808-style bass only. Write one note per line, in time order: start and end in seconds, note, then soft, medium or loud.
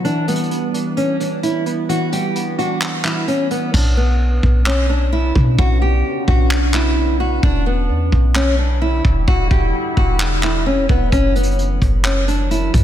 3.74 4.40 B1 loud
4.43 5.32 B1 loud
5.36 5.58 B2 loud
5.59 6.03 B1 loud
6.28 7.39 B1 loud
7.43 7.91 E1 loud
7.89 8.11 E2 loud
8.12 9.01 B1 loud
9.05 9.27 E1 loud
9.28 9.50 E1 loud
9.51 9.73 E1 loud
9.97 10.68 E1 loud
10.66 10.79 F#1 loud
10.78 10.89 E1 loud
10.89 11.11 E1 loud
11.12 11.79 F#1 loud
11.82 12.70 F#1 loud
12.74 12.84 F#2 loud